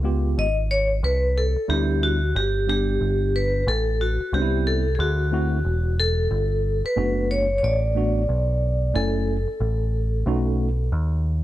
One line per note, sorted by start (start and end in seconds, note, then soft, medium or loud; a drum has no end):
0.00 0.34 C#2 loud
0.00 0.45 G#3 medium
0.04 0.45 B3 medium
0.04 0.46 F4 medium
0.04 0.46 G4 medium
0.37 1.00 G#1 medium
0.37 0.53 D#5 loud
0.71 0.86 C#5 loud
1.03 1.54 C2 loud
1.03 1.38 B4 medium
1.38 1.68 A4 medium
1.56 muted picked electric bass stroke soft
1.68 2.32 D2 medium
1.68 2.18 G3 medium
1.68 2.18 B3 medium
1.68 2.19 D4 medium
1.68 2.19 E4 medium
1.68 2.03 G4 medium
2.03 2.37 F#4 medium
2.35 2.98 G1 loud
2.35 2.68 G4 medium
2.67 3.61 G3 medium
2.67 3.62 B3 medium
2.67 3.62 D4 medium
2.67 3.62 G4 medium
2.67 3.37 G4 medium
3.01 3.64 G1 medium
3.36 3.66 B4 medium
3.67 4.18 A1 loud
3.67 4.02 A4 medium
4.01 4.35 F#4 medium
4.21 muted picked electric bass stroke soft
4.33 4.95 C2 medium
4.33 4.82 G3 medium
4.33 4.83 B3 medium
4.33 4.83 C4 medium
4.33 4.42 D4 medium
4.33 4.64 G4 medium
4.42 4.87 E4 medium
4.67 4.95 A4 medium
4.95 5.61 D2 loud
4.95 5.00 G#4 medium
5.00 5.94 F#4 medium
5.32 5.57 A3 medium
5.32 5.57 C4 medium
5.32 5.58 E4 medium
5.32 5.58 F#4 medium
5.65 6.27 E1 medium
6.00 6.81 A4 medium
6.31 6.81 G1 loud
6.85 7.27 B4 medium
6.85 muted picked electric bass stroke soft
6.96 7.59 F#1 medium
6.96 7.46 A3 medium
6.96 7.46 B3 medium
6.96 7.46 D4 medium
6.96 7.46 F#4 medium
7.31 7.57 C#5 medium
7.58 7.63 C#5 medium
7.63 8.25 A1 medium
7.63 8.99 D5 medium
7.95 8.21 A3 medium
7.95 8.21 B3 medium
7.95 8.21 D4 medium
7.95 8.22 F#4 medium
8.29 8.91 B1 medium
8.94 9.45 F#1 loud
8.94 9.35 A3 medium
8.94 9.36 C#4 medium
8.94 9.36 E4 medium
8.94 10.89 A4 medium
8.94 9.36 G#5 medium
9.48 muted picked electric bass stroke soft
9.60 10.23 A1 medium
10.26 10.89 B1 medium
10.26 10.67 A3 medium
10.26 10.68 C#4 medium
10.26 10.68 D#4 medium
10.26 10.68 F#4 medium
10.92 11.44 D#2 medium